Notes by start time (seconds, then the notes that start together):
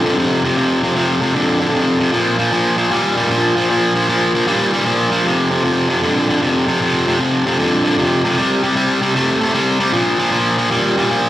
0.05 F2 D3
0.18 F2 C3
0.44 F2 C3
0.57 F2 C3
0.83 F2 C3
0.96 F2 C3
1.21 F2 C3
1.35 F2 D3
1.60 F2 D3
1.74 F2 C3
1.99 F2 C3
2.12 A#2 F3
2.39 A#2 F3
2.52 A#2 F3
2.77 A#2 F3
2.91 A#2 G3
3.17 A#2 G3
3.30 A#2 F3
3.56 A#2 F3
3.70 A#2 F3
3.95 A#2 F3
4.09 A#2 F3
4.34 A#2 F3
4.47 A#2 G3
4.73 A#2 G3
4.85 A#2 F3
5.11 A#2 F3
5.25 F2 C3
5.51 F2 C3
5.64 F2 C3
5.89 F2 C3
6.03 F2 D3
6.29 F2 D3
6.42 F2 C3
6.67 F2 C3
6.81 F2 C3
7.07 F2 C3
7.19 F2 C3
7.46 F2 C3
7.59 F2 D3
7.85 F2 D3
7.98 F2 C3
8.24 F2 C3
8.37 C3 G3
8.63 C3 G3
8.76 C3 G3
9.02 C3 G3
9.15 C3 A3
9.41 C3 A3
9.54 C3 G3
9.80 C3 G3
9.93 A#2 F3
10.19 A#2 F3
10.32 A#2 F3
10.58 A#2 F3
10.71 A#2 G3
10.97 A#2 G3
11.10 A#2 F3